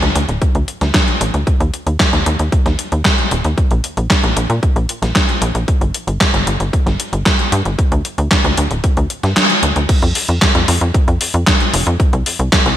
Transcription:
0.02 0.13 D2 medium
0.02 closed hi-hat soft
0.15 0.26 D2 medium
0.15 closed hi-hat medium
0.29 0.39 D1 medium
0.29 closed hi-hat soft
0.42 kick loud
0.42 closed hi-hat medium
0.55 0.66 D2 medium
0.55 closed hi-hat soft
0.68 closed hi-hat medium
0.81 0.92 D2 medium
0.81 snare soft
0.81 closed hi-hat soft
0.94 kick loud
0.94 snare loud
0.94 clap medium
0.94 closed hi-hat medium
1.08 closed hi-hat soft
1.21 1.31 A1 medium
1.21 closed hi-hat medium
1.34 1.45 D2 medium
1.34 closed hi-hat soft
1.47 kick loud
1.47 closed hi-hat medium
1.60 1.71 D#2 medium
1.60 closed hi-hat soft
1.74 closed hi-hat medium
1.87 1.97 D#2 medium
1.87 closed hi-hat soft
2.00 kick loud
2.00 snare loud
2.00 clap medium
2.00 closed hi-hat medium
2.13 2.24 D#2 medium
2.13 closed hi-hat soft
2.26 2.37 D#2 medium
2.26 closed hi-hat medium
2.39 2.50 D#2 medium
2.39 closed hi-hat soft
2.52 kick loud
2.52 closed hi-hat medium
2.66 2.76 D#2 medium
2.66 snare soft
2.66 closed hi-hat soft
2.79 closed hi-hat medium
2.92 3.03 D#2 medium
2.92 closed hi-hat soft
3.05 kick loud
3.05 snare loud
3.05 clap medium
3.05 closed hi-hat medium
3.18 closed hi-hat soft
3.31 3.42 D#1 medium
3.31 closed hi-hat medium
3.44 3.55 D#2 medium
3.44 closed hi-hat soft
3.58 kick loud
3.58 closed hi-hat medium
3.71 3.82 A#1 medium
3.71 closed hi-hat soft
3.84 closed hi-hat medium
3.97 4.08 A#1 medium
3.97 closed hi-hat soft
4.10 kick loud
4.10 snare loud
4.10 clap medium
4.10 closed hi-hat medium
4.24 4.34 A#1 medium
4.24 closed hi-hat soft
4.37 4.47 A#1 medium
4.37 closed hi-hat medium
4.50 4.60 A#2 medium
4.50 closed hi-hat soft
4.63 kick loud
4.63 closed hi-hat medium
4.76 4.87 A#1 medium
4.76 closed hi-hat soft
4.89 closed hi-hat medium
5.02 5.13 A#1 medium
5.02 snare soft
5.02 closed hi-hat soft
5.15 kick loud
5.15 snare loud
5.15 clap medium
5.15 closed hi-hat medium
5.29 closed hi-hat soft
5.42 5.52 A#1 loud
5.42 closed hi-hat medium
5.55 5.66 A#1 medium
5.55 closed hi-hat soft
5.68 kick loud
5.68 closed hi-hat medium
5.81 5.92 G1 medium
5.81 closed hi-hat soft
5.94 closed hi-hat medium
6.07 6.18 G1 medium
6.07 closed hi-hat soft
6.21 kick loud
6.21 snare loud
6.21 clap medium
6.21 closed hi-hat medium
6.34 6.45 G1 medium
6.34 closed hi-hat soft
6.47 6.58 G1 medium
6.47 closed hi-hat medium
6.60 6.71 G1 medium
6.60 closed hi-hat soft
6.73 kick loud
6.73 closed hi-hat medium
6.86 6.97 G1 medium
6.86 snare soft
6.86 closed hi-hat soft
7.00 closed hi-hat medium
7.13 7.24 G1 medium
7.13 closed hi-hat soft
7.26 kick loud
7.26 snare loud
7.26 clap medium
7.26 closed hi-hat medium
7.39 closed hi-hat soft
7.52 7.63 G2 medium
7.52 closed hi-hat medium
7.65 7.76 G1 medium
7.65 closed hi-hat soft
7.79 kick loud
7.79 closed hi-hat medium
7.92 8.03 D2 medium
7.92 closed hi-hat soft
8.05 closed hi-hat medium
8.18 8.29 D2 medium
8.18 closed hi-hat soft
8.31 kick loud
8.31 snare loud
8.31 clap medium
8.31 closed hi-hat medium
8.44 8.55 D2 medium
8.44 closed hi-hat soft
8.57 8.68 D2 medium
8.57 closed hi-hat medium
8.71 8.82 D1 medium
8.71 closed hi-hat soft
8.84 kick loud
8.84 closed hi-hat medium
8.97 9.08 D2 medium
8.97 closed hi-hat soft
9.10 closed hi-hat medium
9.23 9.34 G2 medium
9.23 snare soft
9.23 closed hi-hat soft
9.37 snare loud
9.37 clap medium
9.37 closed hi-hat medium
9.50 closed hi-hat soft
9.63 9.74 D2 medium
9.63 closed hi-hat loud
9.76 9.87 D2 medium
9.76 closed hi-hat soft
9.89 kick loud
9.89 closed hi-hat medium
9.89 crash loud
10.02 10.13 F2 medium
10.02 closed hi-hat soft
10.15 open hi-hat loud
10.28 10.39 F2 medium
10.28 closed hi-hat soft
10.42 kick loud
10.42 snare loud
10.42 clap medium
10.42 closed hi-hat medium
10.55 10.66 F2 medium
10.55 closed hi-hat soft
10.68 10.79 F2 medium
10.68 open hi-hat loud
10.81 10.92 F2 medium
10.81 closed hi-hat soft
10.94 kick loud
10.94 closed hi-hat medium
11.08 11.18 F2 medium
11.08 closed hi-hat soft
11.21 open hi-hat loud
11.34 11.45 F2 medium
11.34 closed hi-hat soft
11.47 kick loud
11.47 snare loud
11.47 clap loud
11.47 closed hi-hat medium
11.60 closed hi-hat soft
11.74 11.84 F1 medium
11.74 open hi-hat loud
11.87 11.97 F2 medium
11.87 closed hi-hat soft
12.00 kick loud
12.00 closed hi-hat medium
12.13 12.24 C2 medium
12.13 closed hi-hat soft
12.26 open hi-hat loud
12.39 12.50 C2 medium
12.39 closed hi-hat soft
12.52 kick loud
12.52 snare loud
12.52 clap loud
12.52 closed hi-hat medium
12.66 12.76 C2 medium
12.66 closed hi-hat soft

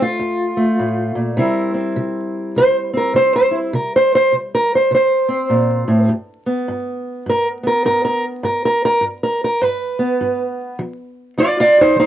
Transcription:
0.00 0.14 F2 medium
0.00 0.56 A3 soft
0.00 1.19 F4 loud
0.19 0.74 F2 medium
0.57 1.35 A3 soft
0.79 1.15 A2 medium
1.15 1.37 A#2 medium
1.37 1.92 C3 medium
1.37 4.88 G3 medium
1.37 1.74 C4 medium
1.37 3.50 E4 medium
1.37 2.57 A#4 medium
1.74 2.92 C4 soft
1.96 2.51 C3 medium
2.56 3.10 C3 medium
2.56 2.76 C5 loud
2.93 3.71 C4 medium
2.93 3.15 A#4 medium
3.14 3.68 C3 medium
3.14 3.35 C5 loud
3.36 3.54 C5 loud
3.51 3.71 E4 soft
3.73 4.27 C3 medium
3.73 3.94 A#4 medium
3.96 4.14 C5 loud
4.15 4.33 C5 loud
4.32 4.86 C3 medium
4.55 4.73 A#4 loud
4.75 4.93 C5 loud
4.91 5.45 C3 medium
4.91 6.10 C5 loud
5.28 6.06 C4 medium
5.50 5.86 A#2 medium
5.88 6.09 A2 medium
6.09 6.63 G2 medium
6.46 7.62 B3 soft
6.68 7.22 G2 medium
7.26 7.80 G2 medium
7.26 7.47 A#4 loud
7.63 8.41 B3 medium
7.63 7.85 A#4 loud
7.85 8.39 G2 medium
7.85 8.03 A#4 medium
8.05 8.24 A#4 loud
8.43 8.98 G2 medium
8.43 8.64 A#4 medium
8.65 8.84 A#4 medium
8.85 9.04 A#4 loud
9.01 9.56 G2 medium
9.23 9.42 A#4 loud
9.44 9.61 A#4 medium
9.61 10.16 G2 medium
9.61 10.79 B4 medium
9.99 10.77 B3 medium
10.21 10.75 G2 medium
10.79 11.33 F3 medium
11.37 11.92 F3 medium
11.37 11.57 F4 medium
11.37 11.58 D5 loud
11.60 11.78 F4 medium
11.60 11.79 D5 loud
11.81 11.98 D#4 medium
11.81 11.98 C5 loud
11.96 12.06 F3 medium
11.96 12.06 D#4 medium
11.96 12.06 C5 loud

